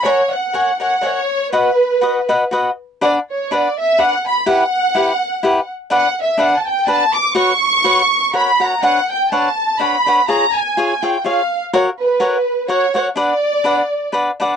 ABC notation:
X:1
M:3/4
L:1/16
Q:"Swing" 1/4=124
K:B
V:1 name="Violin section"
c2 f4 f2 c4 | B8 z4 | [K:Bm] d2 c2 d2 e2 f2 b2 | f8- f2 z2 |
f2 e2 f3/2 a/2 g2 a2 d'2 | c'8 b2 ^a2 | f2 g2 a4 b4 | ^a2 ^g4 =g2 ^e3 z |
c2 B6 c2 c2 | d8 z4 |]
V:2 name="Cavaquinho"
[Acfg]2 z2 [Acfg]2 [Acfg]2 [Acfg]2 z2 | [FBdf]2 z2 [FBdf]2 [FBdf]2 [FBdf]2 z2 | [K:Bm] [DBdf]2 z2 [DBdf]2 z2 [DBdf]2 z2 | [EGBf]2 z2 [EGBf]2 z2 [EGBf]2 z2 |
[DBdf]2 z2 [DBdf]2 z2 [DBdf]2 z2 | [FBcf]2 z2 [FBcf]2 z2 [F^Acf]2 [FAcf]2 | [DBcf]2 z2 [DBcf]2 z2 [DBcf]2 [DBcf]2 | [^E^Gc^e]2 z2 [EGce]2 [EGce]2 [EGce]2 z2 |
[F^Acf]2 z2 [FAcf]2 z2 [FAcf]2 [FAcf]2 | [DBdf]2 z2 [DBdf]2 z2 [DBdf]2 [DBdf]2 |]